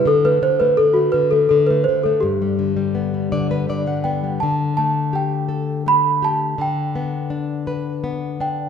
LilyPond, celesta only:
\new Staff \with { instrumentName = "Celesta" } { \time 3/4 \key g \major \tempo 4 = 83 a'16 b'16 c''16 b'16 a'16 fis'16 b'16 a'16 a'16 b'16 c''16 a'16 | g'2 r8 g''8 | a''8 a''8 g''4 b''8 a''8 | g''4 r4. g''8 | }